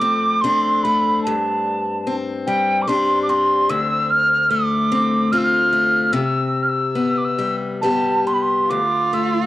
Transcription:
0.00 1.26 F2 medium
0.00 0.43 A3 soft
0.00 0.43 C4 soft
0.00 0.44 F4 soft
0.00 0.43 D6 medium
0.41 0.83 A3 soft
0.41 2.07 C4 soft
0.41 2.10 D4 medium
0.41 0.85 C6 medium
0.83 1.33 A3 soft
0.83 1.22 B5 medium
1.23 3.69 G2 medium
1.23 2.16 A5 medium
2.07 2.88 C4 medium
2.47 2.87 G3 soft
2.47 2.84 G5 medium
2.82 2.90 D6 medium
2.88 3.77 G3 soft
2.88 3.29 C4 soft
2.88 4.95 D4 medium
2.88 3.22 C6 medium
3.23 3.31 D6 soft
3.29 4.50 C4 soft
3.29 3.71 C6 medium
3.69 6.12 D2 medium
3.69 4.12 E6 medium
4.10 4.51 F6 medium
4.50 5.31 A3 medium
4.50 5.33 D6 medium
4.92 5.32 C4 medium
5.32 5.71 A3 soft
5.32 6.98 C4 soft
5.32 6.22 F4 medium
5.32 5.39 F6 medium
5.38 5.46 E6 medium
5.44 6.14 F6 medium
5.73 6.21 A3 soft
6.13 8.70 C3 medium
6.13 6.64 E6 medium
6.63 6.70 F6 soft
6.69 7.19 E6 medium
6.95 7.82 B3 soft
7.18 7.26 D6 soft
7.25 7.56 E6 medium
7.39 7.82 G3 soft
7.82 8.78 G3 soft
7.82 8.25 B3 soft
7.82 8.79 G4 soft
7.82 8.29 A5 medium
8.27 8.78 B3 soft
8.27 8.35 C6 medium
8.34 8.43 B5 soft
8.42 8.71 C6 medium
8.69 9.46 D2 medium
8.69 9.46 F4 medium
8.69 9.15 D6 medium
9.13 9.46 A3 soft
9.13 9.46 E6 medium

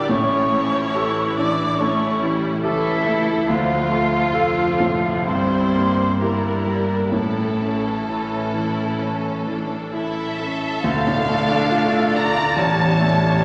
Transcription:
0.00 0.11 A#1 medium
0.00 0.11 A#2 medium
0.00 0.14 D3 medium
0.00 0.10 G3 medium
0.00 0.12 D4 medium
0.00 0.14 D4 medium
0.00 0.13 G4 medium
0.00 0.13 A#4 medium
0.00 0.11 D5 medium
0.00 0.11 D6 medium
0.09 2.60 A1 medium
0.09 1.74 A2 medium
0.09 2.60 A2 medium
0.09 0.53 A3 medium
0.09 1.37 C#4 medium
0.09 0.93 C#4 medium
0.09 1.78 E4 medium
0.09 1.37 C#5 medium
0.09 1.38 C#6 loud
0.52 0.94 F3 medium
0.52 1.20 A3 medium
0.95 1.79 E3 medium
0.95 1.79 E4 medium
0.95 1.33 G4 medium
0.95 1.33 A4 medium
1.37 2.05 E3 medium
1.37 1.80 D4 medium
1.37 1.78 D5 medium
1.37 1.81 D6 medium
1.79 2.21 A3 medium
1.79 2.47 A3 medium
1.79 2.62 C#4 medium
1.79 2.22 C#4 medium
1.79 2.62 E4 medium
1.79 2.21 C#5 medium
1.79 2.21 C#6 medium
2.21 2.90 E3 medium
2.21 2.63 G3 medium
2.63 3.46 C#2 medium
2.63 3.47 C#2 medium
2.63 3.45 E3 medium
2.63 3.47 A3 medium
2.63 3.05 C#4 medium
2.63 3.45 E4 medium
2.63 3.02 G4 medium
2.63 3.47 A4 medium
2.63 3.02 A4 medium
2.63 3.49 E5 medium
3.05 3.48 A3 medium
3.05 3.48 E4 medium
3.48 4.32 D2 medium
3.48 5.23 D2 medium
3.48 5.27 F3 medium
3.48 5.23 A3 medium
3.48 3.91 D4 medium
3.48 5.27 F4 medium
3.48 4.34 F4 medium
3.48 5.28 F5 medium
3.90 4.61 A3 soft
3.90 5.26 F4 medium
4.33 5.25 F1 medium
4.33 5.25 F2 medium
4.33 5.27 D4 medium
4.33 4.75 F4 medium
4.33 4.75 A4 medium
4.80 5.27 A2 soft
5.25 7.13 G1 medium
5.25 7.13 G2 medium
5.25 7.09 G2 medium
5.25 6.18 G3 medium
5.25 6.18 C4 medium
5.25 6.18 E4 medium
5.25 6.17 E4 medium
5.25 6.17 C5 medium
5.25 6.22 C6 medium
5.74 6.47 A#3 soft
6.19 7.11 G3 soft
6.19 7.13 A#3 medium
6.19 7.11 D4 soft
6.19 7.11 E4 soft
6.19 6.62 E4 soft
6.19 6.63 G4 soft
6.19 7.13 A#4 medium
6.19 7.12 A#5 medium
6.66 7.13 G3 soft
7.12 10.61 A1 medium
7.12 8.97 A2 medium
7.12 10.62 A2 soft
7.12 10.65 E3 soft
7.12 9.90 A3 medium
7.12 10.65 C#4 soft
7.12 7.96 E4 soft
7.12 9.90 A4 medium
7.12 9.90 A5 medium
7.60 8.35 C#4 soft
8.07 8.51 C#4 medium
8.07 8.51 E4 soft
8.54 9.29 E3 soft
8.54 9.01 E4 medium
8.99 9.75 C#4 soft
8.99 9.48 C#4 soft
9.47 10.21 E3 soft
9.47 9.94 D4 soft
9.93 10.36 E4 soft
9.93 10.40 E4 medium
9.93 10.81 A4 medium
9.93 10.81 E5 medium
10.39 10.85 C#4 soft
10.39 10.84 A4 medium
10.84 12.54 D2 medium
10.84 12.54 D3 medium
10.84 12.54 A3 medium
10.84 12.60 A3 medium
10.84 12.54 D4 medium
10.84 12.55 D4 medium
10.84 12.13 A4 medium
10.84 12.55 A4 medium
10.84 12.59 D5 medium
10.84 12.15 F5 medium
10.84 13.45 A6 medium
10.84 tam-tam medium
11.07 11.42 A2 medium
11.28 11.63 A3 medium
11.49 11.85 D4 medium
11.71 12.06 F4 medium
11.92 12.27 A4 medium
12.13 12.48 D5 medium
12.13 12.59 D5 medium
12.13 12.58 A#5 medium
12.34 12.57 F5 medium
12.56 13.45 A1 medium
12.56 13.45 A2 medium
12.56 13.42 G3 medium
12.56 13.45 G3 medium
12.56 13.42 C#4 medium
12.56 13.45 C#4 medium
12.56 13.45 G4 medium
12.56 13.45 C#5 medium
12.56 13.44 A5 medium
12.79 13.13 E2 medium
12.99 13.35 A3 medium
13.20 13.45 C#4 medium

